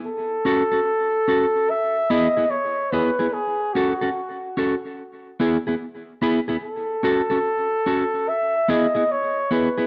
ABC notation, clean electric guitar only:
X:1
M:4/4
L:1/16
Q:"Swing 16ths" 1/4=73
K:F#dor
V:1 name="Clean electric guitar"
z2 [CFA] [CFA] z2 [CFA] z3 [B,EG] [B,EG] z2 [B,EG] [B,EG] | z2 [CFA] [CFA] z2 [CFA] z3 [B,EG] [B,EG] z2 [B,EG] [B,EG] | z2 [CFA] [CFA] z2 [CFA] z3 [B,EG] [B,EG] z2 [B,EG] [B,EG] |]